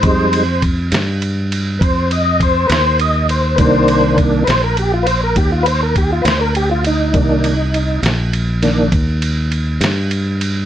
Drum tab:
RD |xxxxxxxxxxxx|xxxxxxxxxxxx|xxxxxxxxxxxx|
SD |---o-----o--|---o-----o--|---o-o---o--|
BD |o-o---o-o---|o-o---o-o---|o-----o-----|